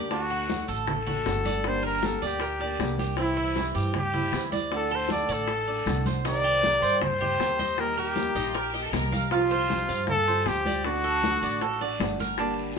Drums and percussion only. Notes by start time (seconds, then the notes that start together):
0.11 high bongo, high conga, long guiro
0.30 high conga
0.49 high bongo, high conga, short guiro
0.68 high conga, short guiro
0.87 high bongo, high conga, low conga, long guiro
1.07 high conga, low conga
1.26 high bongo, low bongo, high conga, short guiro
1.45 high conga, short guiro
1.64 high bongo, high conga, long guiro
1.83 high bongo, high conga
2.03 high bongo, high conga, short guiro
2.22 high conga, short guiro
2.40 high bongo, high conga, long guiro
2.59 high bongo, high conga
2.79 high bongo, low bongo, high conga, short guiro
2.98 high bongo, high conga, short guiro
3.17 high bongo, long guiro
3.38 high conga
3.56 high bongo, high conga, short guiro
3.76 high conga, short guiro
3.94 high bongo, high conga, low conga, long guiro
4.15 high conga, low conga
4.33 high bongo, low bongo, high conga, short guiro
4.52 high conga, short guiro
4.72 high bongo, high conga, long guiro
4.90 high bongo, high conga
5.09 high bongo, high conga, short guiro
5.29 high conga, short guiro
5.48 high bongo, high conga, long guiro
5.67 high bongo, high conga
5.86 high bongo, low bongo, high conga, short guiro
6.06 high bongo, high conga, short guiro
6.25 high bongo, high conga, long guiro
6.45 high conga
6.63 high bongo, high conga, short guiro
6.83 high conga, short guiro
7.02 high bongo, high conga, low conga, long guiro
7.21 high conga, low conga
7.40 high bongo, low bongo, high conga, short guiro
7.59 high conga, short guiro
7.78 high bongo, high conga, long guiro
7.97 high bongo, high conga
8.16 high bongo, high conga, short guiro
8.35 high conga, short guiro
8.55 high bongo, high conga, long guiro
8.74 high bongo, high conga
8.93 high bongo, low bongo, high conga, short guiro
9.12 high bongo, high conga, short guiro
9.31 high bongo, high conga, long guiro
9.51 high conga
9.70 high bongo, high conga, short guiro
9.89 short guiro
10.07 high bongo, high conga, low conga, long guiro
10.27 high conga
10.46 high bongo, low bongo, high conga, short guiro
10.66 high conga, short guiro
10.85 high bongo, high conga, long guiro
11.04 high bongo, high conga
11.23 high bongo, high conga, short guiro
11.42 high conga, short guiro
11.61 high bongo, high conga, long guiro
11.81 high bongo, high conga
12.00 high bongo, low bongo, high conga, short guiro
12.19 high bongo, high conga, short guiro
12.38 high bongo, high conga, long guiro
12.58 high conga